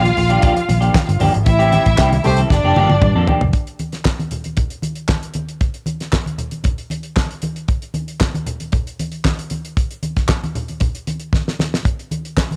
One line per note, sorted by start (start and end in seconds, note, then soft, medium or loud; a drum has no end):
0.00 0.10 A#1 loud
0.00 1.16 F4 medium
0.00 1.16 F5 loud
0.00 muted clean electric guitar stroke soft
0.05 closed hi-hat soft
0.05 high conga medium
0.17 0.37 A#1 medium
0.17 muted clean electric guitar stroke soft
0.17 open hi-hat medium
0.17 muted conga soft
0.17 low conga medium
0.30 0.40 F3 soft
0.30 0.40 A#3 medium
0.30 0.41 D4 medium
0.30 0.41 G4 medium
0.30 closed hi-hat medium
0.30 high conga medium
0.41 0.60 F3 medium
0.41 0.55 A#3 medium
0.41 0.54 D4 medium
0.41 0.54 G4 medium
0.41 kick loud
0.41 closed hi-hat medium
0.41 muted conga soft
0.41 low conga medium
0.55 muted clean electric guitar stroke soft
0.55 closed hi-hat soft
0.68 0.89 A#1 medium
0.68 muted clean electric guitar stroke soft
0.68 closed hi-hat medium
0.68 muted conga soft
0.68 high conga medium
0.81 0.95 F3 medium
0.81 0.95 A#3 medium
0.81 0.95 D4 medium
0.81 0.95 G4 medium
0.81 closed hi-hat soft
0.95 kick loud
0.95 snare loud
0.95 clap medium
0.95 muted conga soft
0.95 high conga medium
1.07 1.18 G1 loud
1.07 muted clean electric guitar stroke soft
1.07 closed hi-hat medium
1.20 1.31 G1 medium
1.20 1.38 F3 medium
1.20 1.33 A#3 medium
1.20 1.33 D4 medium
1.20 1.32 G4 medium
1.20 open hi-hat medium
1.20 muted conga soft
1.20 high conga medium
1.20 low conga medium
1.33 1.44 G#1 medium
1.33 muted clean electric guitar stroke soft
1.33 closed hi-hat soft
1.46 1.76 A1 loud
1.46 2.23 E4 medium
1.46 2.23 E5 loud
1.46 muted clean electric guitar stroke soft
1.46 kick loud
1.46 closed hi-hat medium
1.46 muted conga soft
1.59 1.70 G3 medium
1.59 1.71 C4 medium
1.59 1.71 E4 medium
1.59 1.72 G4 medium
1.59 closed hi-hat soft
1.71 1.86 G3 medium
1.71 1.85 C4 medium
1.71 1.85 E4 medium
1.71 1.84 G4 medium
1.71 closed hi-hat medium
1.71 muted conga soft
1.71 high conga medium
1.85 1.95 A1 loud
1.85 muted clean electric guitar stroke soft
1.85 kick medium
1.85 closed hi-hat soft
1.97 2.18 C2 medium
1.97 2.16 G3 medium
1.97 2.11 C4 medium
1.97 2.10 E4 medium
1.97 2.10 G4 medium
1.97 kick loud
1.97 snare loud
1.97 clap loud
2.11 muted clean electric guitar stroke medium
2.11 closed hi-hat soft
2.11 high conga loud
2.24 2.44 C2 loud
2.24 2.41 A3 medium
2.24 2.41 G4 medium
2.24 2.41 C5 loud
2.24 muted clean electric guitar stroke soft
2.24 open hi-hat medium
2.24 muted conga soft
2.24 low conga medium
2.37 2.50 G3 medium
2.37 2.51 C4 soft
2.37 2.51 E4 medium
2.37 2.51 A4 medium
2.37 closed hi-hat medium
2.37 high conga medium
2.49 2.61 G1 medium
2.49 3.26 D4 medium
2.49 3.26 D5 loud
2.49 muted clean electric guitar stroke soft
2.49 kick loud
2.49 snare medium
2.49 muted conga soft
2.49 low conga medium
2.64 2.73 F1 loud
2.64 2.75 F3 medium
2.64 2.76 A#3 medium
2.64 2.76 D4 medium
2.64 2.76 G4 medium
2.76 2.87 G1 medium
2.76 2.94 F3 medium
2.76 2.90 A#3 loud
2.76 2.89 D4 loud
2.76 2.89 G4 loud
2.76 high tom medium
2.76 muted conga soft
2.76 high conga medium
2.90 2.99 G1 medium
2.90 muted clean electric guitar stroke soft
2.90 high tom medium
3.02 3.12 G2 loud
3.02 muted clean electric guitar stroke soft
3.02 kick loud
3.02 mid tom loud
3.02 high conga medium
3.15 3.24 F2 loud
3.15 3.27 F3 medium
3.15 3.27 A#3 medium
3.15 3.27 D4 medium
3.15 3.28 A4 medium
3.27 3.42 F3 medium
3.27 3.42 A#3 medium
3.27 3.41 D4 medium
3.27 3.40 G4 medium
3.27 floor tom medium
3.27 muted conga soft
3.27 high conga medium
3.27 low conga medium
3.41 3.51 F#1 medium
3.41 muted clean electric guitar stroke medium
3.41 floor tom loud
3.53 kick loud
3.53 closed hi-hat medium
3.67 closed hi-hat soft
3.79 closed hi-hat medium
3.79 high conga medium
3.92 snare soft
3.92 closed hi-hat soft
4.05 kick medium
4.05 snare loud
4.05 clap medium
4.05 muted conga soft
4.19 closed hi-hat soft
4.19 high conga medium
4.31 closed hi-hat medium
4.31 low conga medium
4.44 closed hi-hat soft
4.44 high conga soft
4.57 kick loud
4.57 closed hi-hat medium
4.57 muted conga soft
4.57 low conga medium
4.70 closed hi-hat soft
4.82 closed hi-hat medium
4.82 high conga medium
4.95 closed hi-hat soft
5.09 kick loud
5.09 snare loud
5.09 clap medium
5.09 muted conga soft
5.09 high conga medium
5.23 closed hi-hat soft
5.34 closed hi-hat medium
5.34 high conga medium
5.49 closed hi-hat soft
5.61 kick loud
5.61 closed hi-hat medium
5.61 muted conga soft
5.74 closed hi-hat soft
5.86 closed hi-hat medium
5.86 muted conga soft
5.86 high conga medium
6.00 snare soft
6.00 closed hi-hat soft
6.12 kick medium
6.12 snare loud
6.12 clap medium
6.12 muted conga soft
6.26 closed hi-hat soft
6.26 high conga medium
6.38 closed hi-hat medium
6.38 low conga medium
6.51 closed hi-hat soft
6.51 high conga soft
6.64 kick loud
6.64 closed hi-hat medium
6.64 muted conga soft
6.64 low conga medium
6.78 closed hi-hat soft
6.90 closed hi-hat medium
6.90 high conga medium
7.03 closed hi-hat soft
7.16 kick loud
7.16 snare loud
7.16 clap medium
7.16 high conga medium
7.31 closed hi-hat soft
7.42 closed hi-hat medium
7.42 high conga medium
7.56 closed hi-hat soft
7.68 kick loud
7.68 closed hi-hat medium
7.82 closed hi-hat soft
7.94 closed hi-hat soft
7.94 muted conga soft
7.94 high conga medium
8.08 closed hi-hat soft
8.20 kick loud
8.20 snare loud
8.20 clap loud
8.20 muted conga soft
8.34 closed hi-hat soft
8.34 high conga medium
8.46 closed hi-hat medium
8.46 muted conga soft
8.46 low conga medium
8.60 closed hi-hat soft
8.60 high conga soft
8.72 kick loud
8.72 closed hi-hat medium
8.72 muted conga soft
8.72 low conga medium
8.87 closed hi-hat soft
8.99 closed hi-hat medium
8.99 muted conga soft
8.99 high conga medium
9.12 closed hi-hat soft
9.25 kick loud
9.25 snare loud
9.25 clap medium
9.25 muted conga soft
9.25 high conga medium
9.39 closed hi-hat soft
9.50 closed hi-hat medium
9.50 high conga medium
9.65 closed hi-hat soft
9.77 kick loud
9.77 closed hi-hat medium
9.91 closed hi-hat soft
10.03 closed hi-hat medium
10.03 high conga medium
10.16 kick medium
10.16 snare soft
10.16 closed hi-hat soft
10.29 kick loud
10.29 snare loud
10.29 clap loud
10.44 closed hi-hat soft
10.44 high conga medium
10.55 closed hi-hat medium
10.55 muted conga soft
10.55 low conga medium
10.68 closed hi-hat soft
10.68 high conga soft
10.80 kick loud
10.80 closed hi-hat medium
10.80 muted conga soft
10.80 low conga medium
10.95 closed hi-hat soft
11.07 closed hi-hat medium
11.07 high conga medium
11.20 closed hi-hat soft
11.33 kick loud
11.33 snare medium
11.33 high conga medium
11.48 snare medium
11.59 snare medium
11.59 high conga medium
11.74 snare medium
11.85 kick loud
11.85 closed hi-hat medium
11.99 closed hi-hat soft
12.11 closed hi-hat medium
12.11 high conga medium
12.25 closed hi-hat soft
12.37 kick loud
12.37 snare loud
12.37 clap loud
12.37 muted conga soft
12.51 closed hi-hat soft
12.51 high conga medium